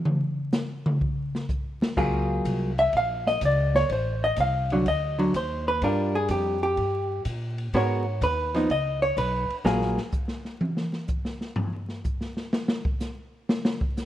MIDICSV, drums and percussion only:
0, 0, Header, 1, 2, 480
1, 0, Start_track
1, 0, Tempo, 480000
1, 51, Time_signature, 4, 2, 24, 8
1, 14053, End_track
2, 0, Start_track
2, 0, Title_t, "Drums"
2, 53, Note_on_c, 9, 47, 100
2, 153, Note_off_c, 9, 47, 0
2, 522, Note_on_c, 9, 44, 60
2, 528, Note_on_c, 9, 38, 99
2, 622, Note_off_c, 9, 44, 0
2, 628, Note_off_c, 9, 38, 0
2, 859, Note_on_c, 9, 47, 103
2, 959, Note_off_c, 9, 47, 0
2, 1013, Note_on_c, 9, 36, 71
2, 1113, Note_off_c, 9, 36, 0
2, 1349, Note_on_c, 9, 38, 59
2, 1449, Note_off_c, 9, 38, 0
2, 1489, Note_on_c, 9, 44, 56
2, 1491, Note_on_c, 9, 36, 73
2, 1589, Note_off_c, 9, 44, 0
2, 1591, Note_off_c, 9, 36, 0
2, 1821, Note_on_c, 9, 38, 98
2, 1921, Note_off_c, 9, 38, 0
2, 1969, Note_on_c, 9, 36, 77
2, 1974, Note_on_c, 9, 49, 74
2, 2069, Note_off_c, 9, 36, 0
2, 2074, Note_off_c, 9, 49, 0
2, 2452, Note_on_c, 9, 36, 17
2, 2452, Note_on_c, 9, 44, 49
2, 2452, Note_on_c, 9, 51, 73
2, 2552, Note_off_c, 9, 36, 0
2, 2552, Note_off_c, 9, 44, 0
2, 2552, Note_off_c, 9, 51, 0
2, 2781, Note_on_c, 9, 51, 50
2, 2881, Note_off_c, 9, 51, 0
2, 2928, Note_on_c, 9, 51, 54
2, 2932, Note_on_c, 9, 36, 17
2, 3028, Note_off_c, 9, 51, 0
2, 3032, Note_off_c, 9, 36, 0
2, 3266, Note_on_c, 9, 38, 48
2, 3367, Note_off_c, 9, 38, 0
2, 3411, Note_on_c, 9, 44, 62
2, 3411, Note_on_c, 9, 51, 74
2, 3414, Note_on_c, 9, 36, 27
2, 3511, Note_off_c, 9, 44, 0
2, 3511, Note_off_c, 9, 51, 0
2, 3514, Note_off_c, 9, 36, 0
2, 3747, Note_on_c, 9, 38, 60
2, 3847, Note_off_c, 9, 38, 0
2, 3894, Note_on_c, 9, 51, 62
2, 3895, Note_on_c, 9, 36, 21
2, 3994, Note_off_c, 9, 51, 0
2, 3995, Note_off_c, 9, 36, 0
2, 4363, Note_on_c, 9, 44, 64
2, 4363, Note_on_c, 9, 51, 68
2, 4374, Note_on_c, 9, 36, 26
2, 4463, Note_off_c, 9, 44, 0
2, 4463, Note_off_c, 9, 51, 0
2, 4474, Note_off_c, 9, 36, 0
2, 4701, Note_on_c, 9, 51, 49
2, 4801, Note_off_c, 9, 51, 0
2, 4857, Note_on_c, 9, 51, 64
2, 4859, Note_on_c, 9, 36, 22
2, 4957, Note_off_c, 9, 51, 0
2, 4959, Note_off_c, 9, 36, 0
2, 5191, Note_on_c, 9, 51, 54
2, 5291, Note_off_c, 9, 51, 0
2, 5340, Note_on_c, 9, 36, 19
2, 5341, Note_on_c, 9, 44, 63
2, 5341, Note_on_c, 9, 51, 72
2, 5440, Note_off_c, 9, 36, 0
2, 5441, Note_off_c, 9, 44, 0
2, 5441, Note_off_c, 9, 51, 0
2, 5816, Note_on_c, 9, 51, 70
2, 5818, Note_on_c, 9, 36, 20
2, 5916, Note_off_c, 9, 51, 0
2, 5918, Note_off_c, 9, 36, 0
2, 6284, Note_on_c, 9, 44, 52
2, 6284, Note_on_c, 9, 51, 69
2, 6294, Note_on_c, 9, 36, 24
2, 6384, Note_off_c, 9, 44, 0
2, 6384, Note_off_c, 9, 51, 0
2, 6394, Note_off_c, 9, 36, 0
2, 6771, Note_on_c, 9, 51, 53
2, 6773, Note_on_c, 9, 36, 17
2, 6871, Note_off_c, 9, 51, 0
2, 6873, Note_off_c, 9, 36, 0
2, 7249, Note_on_c, 9, 44, 56
2, 7249, Note_on_c, 9, 51, 74
2, 7253, Note_on_c, 9, 36, 27
2, 7349, Note_off_c, 9, 44, 0
2, 7349, Note_off_c, 9, 51, 0
2, 7353, Note_off_c, 9, 36, 0
2, 7580, Note_on_c, 9, 51, 50
2, 7680, Note_off_c, 9, 51, 0
2, 7734, Note_on_c, 9, 36, 28
2, 7735, Note_on_c, 9, 51, 69
2, 7834, Note_off_c, 9, 36, 0
2, 7835, Note_off_c, 9, 51, 0
2, 8213, Note_on_c, 9, 36, 21
2, 8218, Note_on_c, 9, 44, 52
2, 8218, Note_on_c, 9, 51, 66
2, 8313, Note_off_c, 9, 36, 0
2, 8318, Note_off_c, 9, 44, 0
2, 8318, Note_off_c, 9, 51, 0
2, 8544, Note_on_c, 9, 51, 49
2, 8549, Note_on_c, 9, 38, 46
2, 8644, Note_off_c, 9, 51, 0
2, 8649, Note_off_c, 9, 38, 0
2, 8693, Note_on_c, 9, 36, 23
2, 8696, Note_on_c, 9, 51, 58
2, 8793, Note_off_c, 9, 36, 0
2, 8796, Note_off_c, 9, 51, 0
2, 9172, Note_on_c, 9, 36, 21
2, 9175, Note_on_c, 9, 44, 53
2, 9175, Note_on_c, 9, 51, 83
2, 9272, Note_off_c, 9, 36, 0
2, 9275, Note_off_c, 9, 44, 0
2, 9275, Note_off_c, 9, 51, 0
2, 9502, Note_on_c, 9, 51, 49
2, 9602, Note_off_c, 9, 51, 0
2, 9653, Note_on_c, 9, 38, 107
2, 9753, Note_off_c, 9, 38, 0
2, 9816, Note_on_c, 9, 38, 40
2, 9916, Note_off_c, 9, 38, 0
2, 9973, Note_on_c, 9, 38, 51
2, 10073, Note_off_c, 9, 38, 0
2, 10120, Note_on_c, 9, 44, 61
2, 10127, Note_on_c, 9, 36, 77
2, 10220, Note_off_c, 9, 44, 0
2, 10227, Note_off_c, 9, 36, 0
2, 10280, Note_on_c, 9, 38, 50
2, 10380, Note_off_c, 9, 38, 0
2, 10449, Note_on_c, 9, 38, 33
2, 10549, Note_off_c, 9, 38, 0
2, 10607, Note_on_c, 9, 48, 86
2, 10707, Note_off_c, 9, 48, 0
2, 10767, Note_on_c, 9, 38, 52
2, 10867, Note_off_c, 9, 38, 0
2, 10926, Note_on_c, 9, 38, 43
2, 11026, Note_off_c, 9, 38, 0
2, 11077, Note_on_c, 9, 44, 59
2, 11087, Note_on_c, 9, 36, 75
2, 11177, Note_off_c, 9, 44, 0
2, 11187, Note_off_c, 9, 36, 0
2, 11249, Note_on_c, 9, 38, 47
2, 11349, Note_off_c, 9, 38, 0
2, 11408, Note_on_c, 9, 38, 45
2, 11508, Note_off_c, 9, 38, 0
2, 11558, Note_on_c, 9, 43, 100
2, 11658, Note_off_c, 9, 43, 0
2, 11732, Note_on_c, 9, 43, 39
2, 11832, Note_off_c, 9, 43, 0
2, 11886, Note_on_c, 9, 38, 39
2, 11986, Note_off_c, 9, 38, 0
2, 12042, Note_on_c, 9, 44, 60
2, 12049, Note_on_c, 9, 36, 76
2, 12142, Note_off_c, 9, 44, 0
2, 12149, Note_off_c, 9, 36, 0
2, 12208, Note_on_c, 9, 38, 47
2, 12308, Note_off_c, 9, 38, 0
2, 12367, Note_on_c, 9, 38, 54
2, 12467, Note_off_c, 9, 38, 0
2, 12528, Note_on_c, 9, 38, 84
2, 12628, Note_off_c, 9, 38, 0
2, 12682, Note_on_c, 9, 38, 96
2, 12782, Note_off_c, 9, 38, 0
2, 12849, Note_on_c, 9, 36, 93
2, 12949, Note_off_c, 9, 36, 0
2, 13002, Note_on_c, 9, 44, 66
2, 13006, Note_on_c, 9, 38, 49
2, 13102, Note_off_c, 9, 44, 0
2, 13106, Note_off_c, 9, 38, 0
2, 13492, Note_on_c, 9, 38, 108
2, 13592, Note_off_c, 9, 38, 0
2, 13649, Note_on_c, 9, 38, 104
2, 13749, Note_off_c, 9, 38, 0
2, 13811, Note_on_c, 9, 36, 84
2, 13911, Note_off_c, 9, 36, 0
2, 13970, Note_on_c, 9, 44, 64
2, 13975, Note_on_c, 9, 38, 48
2, 14053, Note_off_c, 9, 38, 0
2, 14053, Note_off_c, 9, 44, 0
2, 14053, End_track
0, 0, End_of_file